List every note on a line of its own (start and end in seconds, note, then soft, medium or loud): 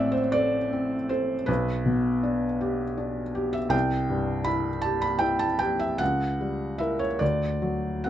0.00 1.45 A1 medium
0.00 0.18 A2 soft
0.00 0.56 C4 medium
0.00 0.12 C5 medium
0.00 0.32 D5 medium
0.00 1.50 E5 medium
0.00 1.50 F#5 medium
0.12 0.32 C5 medium
0.32 0.95 A4 soft
0.32 1.09 D5 medium
0.73 1.33 C4 medium
1.09 1.48 A4 medium
1.09 1.48 C5 medium
1.46 3.69 B1 medium
1.46 3.54 B4 medium
1.85 2.46 B2 soft
2.23 2.83 D4 medium
2.61 3.21 G4 medium
2.97 3.58 D4 soft
3.35 3.73 G4 medium
3.53 3.72 E5 medium
3.69 5.94 C2 medium
3.69 4.46 G5 medium
4.10 4.69 G2 medium
4.44 5.07 E4 medium
4.44 4.83 B5 medium
4.82 5.45 G4 medium
4.82 5.02 A5 medium
5.02 5.21 B5 medium
5.19 5.84 E4 medium
5.19 5.40 G5 medium
5.39 5.60 A5 medium
5.59 6.00 G4 medium
5.59 5.79 G5 medium
5.79 6.00 E5 medium
5.98 7.17 C#2 medium
5.98 6.79 F#5 medium
6.41 7.05 G3 soft
6.78 7.17 E4 soft
6.78 7.17 A#4 soft
6.78 6.99 E5 medium
6.99 7.20 C#5 medium
7.19 8.10 D2 medium
7.19 8.04 D5 medium
7.62 8.10 F#3 soft
8.04 8.10 C4 soft
8.04 8.10 A4 soft
8.04 8.10 F#5 medium